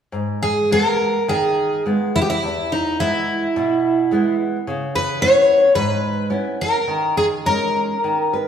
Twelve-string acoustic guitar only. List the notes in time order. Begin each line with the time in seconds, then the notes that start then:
0.43 G#4
0.72 A#4
1.29 G#4
2.16 E4
2.22 G4
2.30 E4
2.72 D#4
3.00 E4
4.95 B4
5.22 C#5
5.75 B4
6.61 A#4
7.17 G#4
7.46 A#4